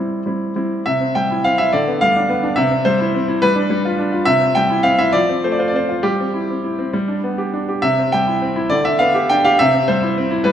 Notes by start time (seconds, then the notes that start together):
Already playing: G3 C4 E4
0.26 G3 C4 E4
0.56 G3 C4 E4
0.86 C3 E5
1.00 C4
1.15 G3 G5
1.31 E4
1.44 C4 F5
1.58 E4 E5
1.73 D3 D5
1.88 B3
2.01 G3 F5
2.16 D4
2.29 B3
2.43 D4
2.56 C3 E5
2.71 C4
2.85 G3 C5
3.00 E4
3.14 C4
3.28 E4
3.42 G3 B4
3.56 D4
3.70 G3
3.85 F4
3.98 D4
4.12 F4
4.25 C3 E5
4.41 C4
4.55 G3 G5
4.70 E4
4.83 C4 F5
4.99 E4 E5
5.13 F3 D5
5.29 C4
5.44 A3 C5
5.52 D5
5.59 F4 C5
5.68 D5
5.73 C4 C5
5.89 F4
6.03 G3 G4
6.20 C4
6.34 E4
6.50 C4
6.64 E4
6.79 C4
6.93 G3
7.08 D4
7.24 B3
7.38 G4
7.54 D4
7.69 G4
7.82 C3 E5
7.99 C4
8.12 G3 G5
8.27 E4
8.42 C4
8.56 E4
8.70 D3 D5
8.85 D4 E5
8.99 B3 F5
9.15 G4
9.30 D4 G5
9.45 G4 F5
9.59 C3 E5
9.74 C4
9.88 G3 C5
10.03 E4
10.18 C4
10.31 E4
10.44 G3 B4